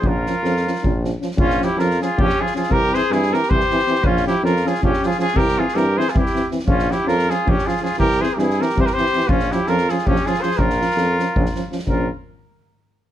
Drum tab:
SD |--o-oooo--o-oo|-oo-ooo--o-ooo|--o-oooo-ooooo|-oo-oooo-ooooo|
BD |o-------o-----|o-------o-----|o-------o-----|o-------o-----|

SD |-o-oo-oo-oo-oo|-oo-ooo--ooooo|-oo-oooo-ooooo|-oo-oooo-ooooo|
BD |o-------o-----|o-------o-----|o-------o-----|o-------o-----|

SD |-oooo-o--oo-oo|--------------|
BD |o-------o-----|o-------------|